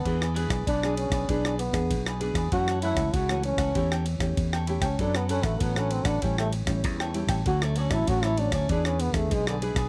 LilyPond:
<<
  \new Staff \with { instrumentName = "Cavaquinho" } { \time 4/4 \key a \major \tempo 4 = 97 <e' gis' b' d''>16 <gis' b' d''>16 <e' gis' b' d''>16 <gis' b' d''>16 <e' gis' b' d''>16 <gis' b' d''>8 <gis' b' d''>16 <e' gis' b' d''>16 <gis' b' d''>16 r8. <gis' b' d''>16 <e' gis' b' d''>16 <gis' b' d''>16 | <e' a' cis'' fis''>16 <a' cis'' fis''>16 <e' a' cis'' fis''>16 <a' cis'' fis''>16 <e' a' cis'' fis''>16 <a' cis'' fis''>8 <a' cis'' fis''>16 <e' a' cis'' g''>16 <a' cis'' g''>16 r8. <a' cis'' g''>16 <e' a' cis'' g''>16 <a' cis'' g''>16 | <d' a' b' fis''>16 <a' b' fis''>16 <d' a' b' fis''>16 <a' b' fis''>16 <d' a' b' fis''>16 <a' b' fis''>8 <a' b' fis''>16 <g' a' cis'' g''>16 <a' cis'' g''>16 r8. <a' cis'' g''>16 <g' a' cis'' g''>16 <a' cis'' g''>16 | <fis' a' cis'' d''>16 <a' cis'' d''>16 <fis' a' cis'' d''>16 <a' cis'' d''>16 <fis' a' cis'' d''>16 <a' cis'' d''>8 <a' cis'' d''>16 <e' gis' b' d''>16 <gis' b' d''>16 r8. <gis' b' d''>16 <e' gis' b' d''>16 <gis' b' d''>16 | }
  \new Staff \with { instrumentName = "Trombone" } { \time 4/4 \key a \major b8 r8 d'8 cis'8 d'8 b4 r8 | fis'8 e'8 fis'8 cis'4 r4 r16 cis'16 | d'16 b16 cis'16 a16 b16 cis'16 c'16 d'16 cis'16 a16 r4. | fis'16 a16 cis'16 e'16 fis'16 e'16 d'16 cis'16 d'16 cis'16 b16 a16 gis16 d16 r8 | }
  \new Staff \with { instrumentName = "Nylon-string guitar" } { \time 4/4 \key a \major << { <b d' gis'>16 r16 <b d' gis'>8 r16 <b d' gis'>8. <b d' gis'>8 r16 <b d' gis'>8. <b d' gis'>8 | <e a cis'>8 <e a cis'>8 r16 <e a cis'>8. <a cis' g'>8 r16 <a cis' g'>8. <a cis' g'>16 r16 | <b d' a'>16 r16 <b d' a'>8. <b d' a'>8. <g cis' e'>8 r16 <g cis' e'>8. <g cis' e'>8 | <fis a cis'>8. <fis a cis'>8. <fis a cis'>8 <b d' gis'>8. <b d' gis'>8. <b d' gis'>8 | } \\ { e4 b,4 e4 b,4 | fis,4 cis4 e4 e4 | fis4 fis4 a,4 e4 | d4 a,4 e4 b,4 | } >> }
  \new Staff \with { instrumentName = "Fingered electric bass" } { \clef bass \time 4/4 \key a \major e,8. b,,16 b,,8. b,,16 b,,8. e,16 b,,8. e,16 | fis,8. cis,16 cis,8. cis,16 e,8. e,16 e,8. cis,16 | fis,8. a,,16 a,,8. a,,16 a,,8. a,,16 e,8. a,,16 | d,8. a,,16 a,,8. d,16 e,8. e,16 b,,8. b,,16 | }
  \new DrumStaff \with { instrumentName = "Drums" } \drummode { \time 4/4 <bd cymr>16 ss16 cymr16 <bd cymr ss>16 <bd cymr>16 ss16 cymr16 <bd cymr ss>16 <bd cymr>16 ss16 cymr16 <bd cymr ss>16 <bd cymr>16 ss16 cymr16 <bd cymr ss>16 | <bd cymr>16 ss16 cymr16 <bd cymr ss>16 <bd cymr>16 ss16 cymr16 <bd cymr ss>16 <bd cymr>16 ss16 cymr16 <bd cymr ss>16 <bd cymr>16 ss16 cymr16 <bd cymr ss>16 | <bd cymr>16 ss16 cymr16 <bd cymr ss>16 <bd cymr>16 ss16 cymr16 <bd cymr ss>16 <bd cymr>16 ss16 cymr16 <bd cymr ss>16 <bd cymr>16 ss16 cymr16 <bd cymr ss>16 | <bd cymr>16 ss16 cymr16 <bd cymr ss>16 <bd cymr>16 ss16 cymr16 <bd cymr ss>16 <bd cymr>16 ss16 cymr16 <bd cymr ss>16 <bd cymr>16 ss16 cymr16 <bd cymr ss>16 | }
>>